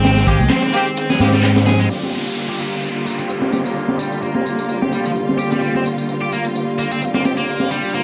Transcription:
Already playing: picked electric bass G#1, string section D#3 G#3 C4 G5, distorted electric guitar C4
0.03 snare, closed hi-hat, tambourine
0.17 snare
0.27 picked electric bass G#1, distorted electric guitar G#3, horn section A#3 C4 G4, kick, closed hi-hat, tambourine
0.40 picked electric bass C2, tambourine, high conga, low conga
0.50 distorted electric guitar C4, snare, clap, closed hi-hat, tambourine
0.63 distorted electric guitar C4, snare
0.73 horn section A#3 C4 G4, closed hi-hat, tambourine
0.86 tambourine
0.97 closed hi-hat, tambourine
1.10 distorted electric guitar G#4, snare, high conga, low conga
1.20 picked electric bass G#2, distorted electric guitar G#3, horn section A#3 C4 G4, snare, closed hi-hat, tambourine
1.33 distorted electric guitar G3, snare, closed hi-hat, tambourine
1.43 snare, clap, closed hi-hat, tambourine
1.56 snare, closed hi-hat
1.66 distorted electric guitar G#4, snare, closed hi-hat, tambourine, high conga, low conga
1.79 distorted electric guitar G#3, snare, tambourine
1.90 string section D3 G3 A#3 F4, distorted electric guitar G3, closed hi-hat, tambourine, downlifter
2.03 distorted electric guitar C4, snare
2.13 closed hi-hat, tambourine
2.26 tambourine
2.36 closed hi-hat, tambourine
2.49 distorted electric guitar G4
2.59 distorted electric guitar A#3, open hi-hat, tambourine
2.72 tambourine
2.82 closed hi-hat, tambourine
2.95 closed hi-hat
3.06 distorted electric guitar A#3, closed hi-hat, tambourine
3.19 distorted electric guitar C4, tambourine
3.28 closed hi-hat, tambourine
3.42 distorted electric guitar A#3, snare
3.52 distorted electric guitar G4, snare, closed hi-hat, tambourine
3.65 distorted electric guitar A#3, tambourine
3.76 closed hi-hat, tambourine
3.88 snare
3.99 distorted electric guitar G3, closed hi-hat, tambourine
4.12 tambourine
4.22 distorted electric guitar A#3, closed hi-hat, tambourine
4.35 distorted electric guitar A#3, snare
4.45 closed hi-hat, tambourine
4.59 tambourine
4.68 closed hi-hat, tambourine
4.82 distorted electric guitar G4, snare
4.91 distorted electric guitar G3, closed hi-hat, tambourine
5.05 distorted electric guitar F3, closed hi-hat, tambourine
5.16 closed hi-hat, tambourine
5.29 snare
5.38 distorted electric guitar G4, closed hi-hat, tambourine
5.52 distorted electric guitar G3, snare, tambourine
5.62 distorted electric guitar G3, closed hi-hat, tambourine
5.75 distorted electric guitar C4, snare
5.85 closed hi-hat, tambourine
5.98 tambourine
6.08 closed hi-hat, tambourine
6.21 distorted electric guitar G4
6.31 distorted electric guitar A#3, open hi-hat, tambourine
6.45 tambourine
6.54 closed hi-hat, tambourine
6.68 closed hi-hat
6.78 distorted electric guitar A#3, closed hi-hat, tambourine
6.91 distorted electric guitar C4, tambourine
7.01 closed hi-hat, tambourine
7.14 distorted electric guitar A#3, snare
7.25 distorted electric guitar G4, snare, closed hi-hat, tambourine
7.38 distorted electric guitar A#3, tambourine
7.48 closed hi-hat, tambourine
7.60 snare
7.71 distorted electric guitar G3, closed hi-hat, tambourine
7.84 tambourine
7.94 distorted electric guitar A#3, closed hi-hat, tambourine

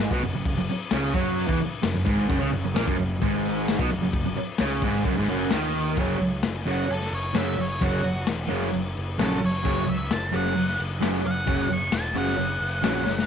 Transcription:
Already playing: distorted electric guitar G#2
0.11 picked electric bass B1, distorted electric guitar B2, kick
0.22 picked electric bass F#1, distorted electric guitar F#2, crash
0.34 picked electric bass F#1, distorted electric guitar F#2
0.45 kick, crash
0.57 picked electric bass F#1, distorted electric guitar F#2
0.69 muted picked electric bass stroke, muted distorted electric guitar stroke, crash
0.91 picked electric bass C#2, distorted electric guitar C#3, snare, crash
1.14 picked electric bass F#2, distorted electric guitar F#3, kick, crash
1.37 crash
1.48 picked electric bass E2, distorted electric guitar E3, kick
1.60 muted distorted electric guitar stroke, muted picked electric bass stroke, crash
1.83 picked electric bass F#1, distorted electric guitar F#2, snare, crash
1.94 picked electric bass F#1, distorted electric guitar F#2
2.05 picked electric bass G#1, distorted electric guitar G#2, kick, crash
2.29 picked electric bass F#1, distorted electric guitar F#2, kick, crash
2.40 picked electric bass C#2, distorted electric guitar C#3
2.52 picked electric bass F#1, distorted electric guitar F#2, crash
2.64 picked electric bass F#1, distorted electric guitar F#2
2.75 picked electric bass A#1, distorted electric guitar A#2, snare, crash
2.87 picked electric bass F#1, distorted electric guitar F#2, kick
2.99 picked electric bass F#1, distorted electric guitar F#2, crash
3.22 picked electric bass G#1, distorted electric guitar G#2, kick, crash
3.45 crash
3.68 snare, crash
3.79 picked electric bass B1, distorted electric guitar B2, kick
3.91 picked electric bass F#1, distorted electric guitar F#2, crash
4.03 picked electric bass F#1, distorted electric guitar F#2
4.13 kick, crash
4.25 picked electric bass F#1, distorted electric guitar F#2
4.35 muted distorted electric guitar stroke, muted picked electric bass stroke, crash
4.58 picked electric bass C#2, distorted electric guitar C#3, snare, crash
4.82 picked electric bass G#1, distorted electric guitar G#2, kick, crash
5.05 picked electric bass F#1, distorted electric guitar F#2, kick, crash
5.17 picked electric bass G#1, distorted electric guitar G#2
5.28 picked electric bass F#1, distorted electric guitar F#2, crash
5.51 picked electric bass D#2, distorted electric guitar D#3, snare, crash
5.75 crash
5.97 picked electric bass F#1, distorted electric guitar F#2 C#3 F#3, kick, crash
6.20 picked electric bass C#2, crash
6.43 picked electric bass F#1, snare, crash
6.66 picked electric bass F#1, distorted electric guitar F#2 C#3 F#3, crash
6.71 lead electric guitar F#4
6.90 picked electric bass F#1, lead electric guitar A4, crash
7.01 snare
7.11 picked electric bass F#1, lead electric guitar C#5, crash
7.34 picked electric bass F#1, distorted electric guitar F#2 C#3 F#3, snare, crash
7.38 lead electric guitar E5
7.58 picked electric bass F#1, lead electric guitar C#5, crash
7.81 picked electric bass F#1, distorted electric guitar F#2 C#3 F#3, lead electric guitar F#4, kick, crash
8.04 picked electric bass F#1, crash
8.27 picked electric bass E1, snare, crash
8.48 picked electric bass F#1, distorted electric guitar F#2 C#3 F#3, crash
8.62 snare
8.73 picked electric bass F#1, crash
8.97 picked electric bass F#1, crash
9.19 picked electric bass A#1, distorted electric guitar F#2 C#3 F#3, lead electric guitar A4, snare, crash
9.43 picked electric bass F#1, lead electric guitar C#5, crash
9.64 picked electric bass F#1, distorted electric guitar F#2 C#3 F#3, kick, crash
9.89 picked electric bass C#2, lead electric guitar E5, crash
10.11 picked electric bass F#1, lead electric guitar A5, snare, crash
10.32 picked electric bass F#1, distorted electric guitar F#2 C#3 F#3, crash
10.36 lead electric guitar F#5
10.46 snare
10.57 picked electric bass F#1, crash
10.68 snare
10.80 picked electric bass F#1, crash
11.01 picked electric bass F#1, distorted electric guitar F#2 C#3 F#3, snare, crash
11.25 picked electric bass F#1, lead electric guitar F#5, crash
11.46 picked electric bass F#1, distorted electric guitar F#2 C#3 F#3, kick, crash
11.70 picked electric bass F#1, lead electric guitar C#6, crash
11.92 picked electric bass E1, lead electric guitar A5, snare, crash
12.14 picked electric bass F#1, distorted electric guitar F#2 C#3 F#3, lead electric guitar F#5, crash
12.28 snare
12.38 picked electric bass F#1, crash
12.60 picked electric bass F#1, crash
12.83 picked electric bass A#1, distorted electric guitar F#2 C#3 F#3, snare, crash
13.06 picked electric bass F#1, snare
13.19 snare

